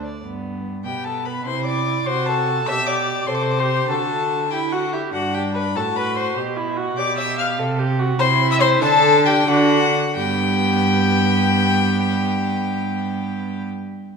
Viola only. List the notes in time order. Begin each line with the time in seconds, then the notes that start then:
0.24 B3
0.85 B3
1.46 E4
2.07 F#4
2.68 G4
3.28 A4
3.59 G4
3.89 F#4
4.51 E4
4.72 F#4
4.93 G4
5.14 D4
5.75 F#4
6.36 G4
6.56 E4
6.77 F#4
6.97 G4
7.59 A4
7.79 G4
7.99 F#4
8.19 E4
8.82 D4
9.48 D4
10.16 B3